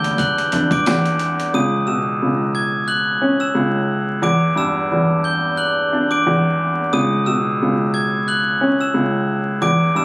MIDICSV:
0, 0, Header, 1, 5, 480
1, 0, Start_track
1, 0, Tempo, 674157
1, 1092, Time_signature, 4, 2, 24, 8
1, 7155, End_track
2, 0, Start_track
2, 0, Title_t, "Glockenspiel"
2, 0, Program_c, 0, 9
2, 0, Note_on_c, 0, 91, 79
2, 0, Note_on_c, 0, 103, 72
2, 111, Note_off_c, 0, 91, 0
2, 114, Note_off_c, 0, 103, 0
2, 130, Note_on_c, 0, 90, 83
2, 136, Note_on_c, 0, 102, 63
2, 484, Note_off_c, 0, 90, 0
2, 488, Note_off_c, 0, 102, 0
2, 511, Note_on_c, 0, 86, 75
2, 516, Note_on_c, 0, 98, 59
2, 1065, Note_off_c, 0, 86, 0
2, 1068, Note_off_c, 0, 98, 0
2, 1098, Note_on_c, 0, 87, 88
2, 1103, Note_on_c, 0, 99, 73
2, 1311, Note_off_c, 0, 87, 0
2, 1314, Note_off_c, 0, 99, 0
2, 1330, Note_on_c, 0, 88, 68
2, 1336, Note_on_c, 0, 100, 57
2, 1783, Note_off_c, 0, 88, 0
2, 1786, Note_off_c, 0, 100, 0
2, 1814, Note_on_c, 0, 92, 84
2, 1819, Note_on_c, 0, 104, 58
2, 2029, Note_off_c, 0, 92, 0
2, 2032, Note_off_c, 0, 104, 0
2, 2049, Note_on_c, 0, 90, 82
2, 2055, Note_on_c, 0, 102, 65
2, 2404, Note_off_c, 0, 90, 0
2, 2407, Note_off_c, 0, 102, 0
2, 2422, Note_on_c, 0, 88, 76
2, 2428, Note_on_c, 0, 100, 58
2, 2519, Note_off_c, 0, 88, 0
2, 2522, Note_off_c, 0, 100, 0
2, 3012, Note_on_c, 0, 86, 91
2, 3016, Note_on_c, 0, 98, 70
2, 3228, Note_off_c, 0, 86, 0
2, 3230, Note_off_c, 0, 98, 0
2, 3258, Note_on_c, 0, 88, 78
2, 3263, Note_on_c, 0, 100, 56
2, 3706, Note_off_c, 0, 88, 0
2, 3709, Note_off_c, 0, 100, 0
2, 3732, Note_on_c, 0, 91, 75
2, 3738, Note_on_c, 0, 103, 60
2, 3948, Note_off_c, 0, 91, 0
2, 3952, Note_off_c, 0, 103, 0
2, 3969, Note_on_c, 0, 90, 78
2, 3975, Note_on_c, 0, 102, 58
2, 4324, Note_off_c, 0, 90, 0
2, 4327, Note_off_c, 0, 102, 0
2, 4349, Note_on_c, 0, 86, 70
2, 4354, Note_on_c, 0, 98, 60
2, 4904, Note_off_c, 0, 86, 0
2, 4907, Note_off_c, 0, 98, 0
2, 4934, Note_on_c, 0, 87, 91
2, 4939, Note_on_c, 0, 99, 71
2, 5149, Note_off_c, 0, 87, 0
2, 5152, Note_off_c, 0, 99, 0
2, 5171, Note_on_c, 0, 88, 82
2, 5177, Note_on_c, 0, 100, 56
2, 5623, Note_off_c, 0, 88, 0
2, 5626, Note_off_c, 0, 100, 0
2, 5652, Note_on_c, 0, 92, 80
2, 5657, Note_on_c, 0, 104, 58
2, 5868, Note_off_c, 0, 92, 0
2, 5871, Note_off_c, 0, 104, 0
2, 5895, Note_on_c, 0, 90, 80
2, 5900, Note_on_c, 0, 102, 63
2, 6247, Note_off_c, 0, 90, 0
2, 6250, Note_off_c, 0, 102, 0
2, 6270, Note_on_c, 0, 88, 73
2, 6275, Note_on_c, 0, 100, 58
2, 6363, Note_off_c, 0, 88, 0
2, 6365, Note_off_c, 0, 100, 0
2, 6849, Note_on_c, 0, 86, 97
2, 6855, Note_on_c, 0, 98, 80
2, 7066, Note_off_c, 0, 86, 0
2, 7070, Note_off_c, 0, 98, 0
2, 7094, Note_on_c, 0, 88, 76
2, 7099, Note_on_c, 0, 100, 60
2, 7155, Note_off_c, 0, 88, 0
2, 7155, Note_off_c, 0, 100, 0
2, 7155, End_track
3, 0, Start_track
3, 0, Title_t, "Upright piano"
3, 0, Program_c, 1, 0
3, 0, Control_c, 1, 64, 127
3, 0, Note_on_c, 1, 40, 73
3, 0, Note_on_c, 1, 43, 75
3, 378, Note_on_c, 1, 62, 76
3, 609, Note_off_c, 1, 40, 0
3, 620, Note_on_c, 1, 40, 91
3, 1089, Note_off_c, 1, 43, 0
3, 1095, Note_off_c, 1, 62, 0
3, 1095, Note_on_c, 1, 37, 78
3, 1096, Note_off_c, 1, 40, 0
3, 1100, Control_c, 1, 64, 0
3, 1238, Control_c, 1, 64, 127
3, 1331, Note_on_c, 1, 47, 70
3, 1572, Note_off_c, 1, 37, 0
3, 1583, Note_on_c, 1, 37, 68
3, 2290, Note_on_c, 1, 61, 77
3, 2514, Note_off_c, 1, 37, 0
3, 2524, Note_on_c, 1, 37, 81
3, 3005, Note_on_c, 1, 40, 85
3, 3008, Note_off_c, 1, 37, 0
3, 3011, Note_off_c, 1, 61, 0
3, 3012, Note_off_c, 1, 47, 0
3, 3021, Control_c, 1, 64, 0
3, 3169, Control_c, 1, 64, 127
3, 3244, Note_on_c, 1, 43, 70
3, 3491, Note_off_c, 1, 40, 0
3, 3501, Note_on_c, 1, 40, 69
3, 4220, Note_on_c, 1, 62, 75
3, 4450, Note_off_c, 1, 40, 0
3, 4461, Note_on_c, 1, 40, 83
3, 4928, Note_off_c, 1, 43, 0
3, 4935, Note_on_c, 1, 37, 83
3, 4936, Note_off_c, 1, 62, 0
3, 4937, Note_off_c, 1, 40, 0
3, 4940, Control_c, 1, 64, 0
3, 5064, Control_c, 1, 64, 127
3, 5175, Note_on_c, 1, 47, 71
3, 5415, Note_off_c, 1, 37, 0
3, 5426, Note_on_c, 1, 37, 73
3, 6131, Note_on_c, 1, 61, 77
3, 6355, Note_off_c, 1, 37, 0
3, 6365, Note_on_c, 1, 37, 84
3, 6847, Note_on_c, 1, 40, 83
3, 6849, Note_off_c, 1, 37, 0
3, 6852, Note_off_c, 1, 61, 0
3, 6854, Note_off_c, 1, 47, 0
3, 6862, Control_c, 1, 64, 0
3, 6994, Control_c, 1, 64, 127
3, 7086, Note_on_c, 1, 43, 68
3, 7155, Note_off_c, 1, 40, 0
3, 7155, Note_off_c, 1, 43, 0
3, 7155, End_track
4, 0, Start_track
4, 0, Title_t, "Upright bass"
4, 0, Program_c, 2, 32
4, 0, Note_on_c, 2, 38, 91
4, 97, Note_off_c, 2, 38, 0
4, 376, Note_on_c, 2, 40, 91
4, 582, Note_off_c, 2, 40, 0
4, 7155, End_track
5, 0, Start_track
5, 0, Title_t, "Drums"
5, 31, Note_on_c, 9, 42, 61
5, 102, Note_off_c, 9, 42, 0
5, 130, Note_on_c, 9, 36, 93
5, 137, Note_on_c, 9, 42, 85
5, 201, Note_off_c, 9, 36, 0
5, 208, Note_off_c, 9, 42, 0
5, 273, Note_on_c, 9, 42, 56
5, 344, Note_off_c, 9, 42, 0
5, 371, Note_on_c, 9, 42, 83
5, 442, Note_off_c, 9, 42, 0
5, 505, Note_on_c, 9, 36, 86
5, 511, Note_on_c, 9, 42, 54
5, 576, Note_off_c, 9, 36, 0
5, 582, Note_off_c, 9, 42, 0
5, 614, Note_on_c, 9, 54, 76
5, 615, Note_on_c, 9, 42, 93
5, 622, Note_on_c, 9, 38, 117
5, 685, Note_off_c, 9, 54, 0
5, 687, Note_off_c, 9, 42, 0
5, 693, Note_off_c, 9, 38, 0
5, 751, Note_on_c, 9, 42, 54
5, 823, Note_off_c, 9, 42, 0
5, 851, Note_on_c, 9, 42, 73
5, 922, Note_off_c, 9, 42, 0
5, 994, Note_on_c, 9, 42, 59
5, 1066, Note_off_c, 9, 42, 0
5, 7155, End_track
0, 0, End_of_file